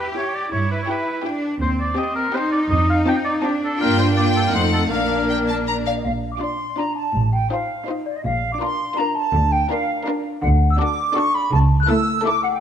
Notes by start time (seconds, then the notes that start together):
Already playing: G4
0.15 E4 G4 C#5 G5
0.34 D5
0.52 G2 E4 C#5
0.71 B4
0.82 C#5
0.88 E4 G4 B4 G5
1.24 D4 E4 G4 G5
1.61 D#2 C4 C5
1.80 D5
1.97 C4 G4 D#5 G5
2.15 A#4
2.34 C4 D#4 G4 C5 G5
2.52 D5
2.70 F2 D#5
2.90 F5
3.07 C4 F4 G5 A5
3.25 D5
3.43 C4 D4 F4 G4 A5
3.65 A4
3.79 G2 A#3 F4 A#4 G5
3.99 C5
4.16 A#3 F4 D5 G5
4.36 A4
4.47 A#4
4.53 F2 A3 C4 D#4 C5 F#5
4.73 A4
4.90 A#1 A#3 D4 A#4 F5
5.30 G5
5.49 A5
5.68 A#5
5.86 D5 F5
5.96 D#5
6.04 A#1 A#2 F5
6.32 D6
6.39 D4 F4 D5 C6
6.78 D4 F4 D5 A#5
6.95 A5
7.15 A1 A2
7.33 G5
7.50 D#4 F4 C5 F5
7.87 D#4 F4 C5
8.06 D5
8.16 D#5
8.24 A#1 A#2 F5
8.52 D6
8.60 D4 F4 A#4 C6
8.97 D4 F4 A#4 A#5
9.15 A5
9.34 D2 D3
9.52 G5
9.70 D4 F4 A#4 F5
10.06 D4 F4 A#4
10.42 D2 D3 F#5
10.70 E6
10.79 D4 F#4 A4 D6
11.15 D4 F#4 A4 C#6
11.35 B5
11.53 C#2 C#3 A5
11.80 F#6
11.88 A3 E4 A4 E6
12.25 A3 E4 A4 D6
12.43 F#5
12.52 G5